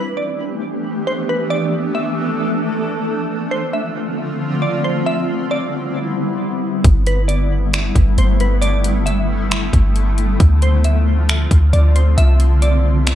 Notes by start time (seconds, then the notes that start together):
Already playing: E3 A3 B3 D4 G4 B4
0.17 D5
1.07 C5
1.29 B4
1.50 A4 D5
1.95 E5
3.29 D3 F3 C4 F4
3.51 C5
3.73 E5
4.62 D5
4.84 C5
5.06 D3 G3 B3 E4 E5
5.51 D5
6.84 G1 G3 A3, kick, closed hi-hat
7.07 B4, closed hi-hat
7.28 D5, closed hi-hat
7.73 finger snap, closed hi-hat
7.95 G1, kick, closed hi-hat
8.18 G1 C5, closed hi-hat
8.40 B4, closed hi-hat
8.62 D5, closed hi-hat
8.84 closed hi-hat
9.06 E5, closed hi-hat
9.51 finger snap, closed hi-hat
9.73 G1, kick, closed hi-hat
9.96 closed hi-hat
10.18 closed hi-hat
10.40 D2 F3 C4 F4, kick, closed hi-hat
10.62 C5, closed hi-hat
10.84 E5, closed hi-hat
11.29 finger snap, closed hi-hat
11.51 D2, kick, closed hi-hat
11.73 D2 D5, closed hi-hat
11.96 C5, closed hi-hat
12.18 C2 G3 B3 E4 E5, closed hi-hat
12.40 closed hi-hat
12.62 D5, closed hi-hat
13.07 finger snap, closed hi-hat